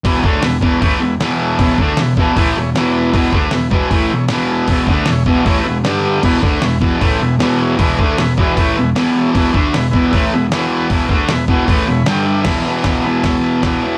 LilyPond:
<<
  \new Staff \with { instrumentName = "Transistor combo organ" } { \time 4/4 \key e \major \tempo 4 = 155 <e' gis' b'>8 <e' gis' cis''>8 <e' gis' b'>8 <e' gis' b'>8 <e' gis' b'>8 <e' gis' b'>8 <e' gis' b'>8 <e' gis' cis''>8 | <e' gis' cis''>8 <e' gis' b'>8 <e' gis' b'>8 <e' gis' b'>8 <e' gis' b'>8 <e' gis' cis''>8 <e' gis' cis''>8 <e' gis' b'>8 | <e' gis' b'>8 <e' gis' b'>8 <e' gis' b'>8 <e' gis' b'>8 <e' gis' b'>8 <e' gis' cis''>8 <e' gis' b'>8 <e' gis' b'>8 | <e' gis' b'>8 <e' gis' b'>8 <e' gis' cis''>8 <e' gis' b'>8 <e' gis' cis''>8 <e' gis' b'>8 <d' g' d''>8 <d' g' e''>8 |
<e' gis' b'>8 <e' gis' b'>8 <e' gis' b'>8 <e' gis' b'>8 <e' gis' b'>8 <e' gis' b'>8 <e' gis' cis''>8 <e' gis' cis''>8 | <e' gis' b'>8 <e' gis' b'>8 <e' gis' b'>8 <e' gis' b'>8 <e' gis' b'>8 <e' gis' b'>8 <e' gis' b'>8 <e' gis' cis''>8 | <e' gis' b'>8 <e' gis' b'>8 <e' gis' b'>8 <e' gis' b'>8 <e' gis' b'>8 <e' gis' b'>8 <e' gis' cis''>8 <e' gis' b'>8 | <e' gis' b'>8 <e' gis' b'>8 <e' gis' b'>8 <e' gis' b'>8 <e' gis' b'>8 <e' gis' cis'' b''>8 <d' g' d'' g''>8 <d' g' d'' e''>8 |
<e' gis' b'>8 <e' gis' b'>8 <e' gis' b'>8 <e' gis' b'>8 <e' gis' cis''>8 <e' gis' b'>8 <e' gis' b'>8 <e' gis' cis''>8 | }
  \new Staff \with { instrumentName = "Distorted electric guitar" } { \clef bass \time 4/4 \key e \major <e, b, e>8 <d a d'>8 <e, b,>8 <e, b, e>8 <a, e a>8 <e, b,>8 <e, b, e>4 | <e, b, e>8 <d a d'>8 <e, b,>8 <e, b, e>8 <a, e a>8 <e, b,>8 <e, b, e>4 | <e, b, e>8 <d a d'>8 <e, b,>8 <e, b, e>8 <a, e a>8 <e, b,>8 <e, b, e>4 | <e, b, e>8 <d a d'>8 <e, b,>8 <e, b, e>8 <a, e a>8 <e, b,>8 <g, d g>4 |
<e, b, e>8 <d a d'>8 <e, b,>8 <e, b, e>8 <a, e a>8 <e, b,>8 <e, b, e>4 | <e, b, e>8 <d a d'>8 <e, b,>8 <e, b, e>8 <a, e a>8 <e, b,>8 <e, b, e>4 | <e, b, e>8 <d a d'>8 <e, b,>8 <e, b, e>8 <a, e a>8 <e, b,>8 <e, b, e>4 | <e, b, e>8 <d a d'>8 <e, b,>8 <e, b, e>8 <a, e a>8 <e, b,>8 <g, d g>4 |
<e, b, e>8 <b, e>8 <e, b, e>8 <b, e>4. <e, b, e>8 <b, e>8 | }
  \new DrumStaff \with { instrumentName = "Drums" } \drummode { \time 4/4 <hho bd>8 bd8 <hho sn>8 bd8 <hho bd>4 <hho sn>4 | <hho bd>8 bd8 <hho sn>8 bd8 <hho bd>4 <hho sn>4 | <hho bd>8 bd8 <hho sn>8 bd8 <hho bd>4 <hho sn>4 | <hho bd>8 bd8 <hho sn>8 bd8 <hho bd>4 <hho sn>4 |
<cymc bd>8 bd8 <hho sn>8 bd8 <hho bd>4 <hho sn>4 | <hho bd>8 bd8 <hho sn>8 bd8 <hho bd>4 <hho sn>4 | <hho bd>8 bd8 <hho sn>8 bd8 <hho bd>4 <hho sn>4 | <hho bd>8 bd8 <hho sn>8 bd8 <hho bd>4 <hho sn>4 |
<cymc hho bd sn>4 <hho bd sn>4 <hho bd sn>4 <hho bd sn>4 | }
>>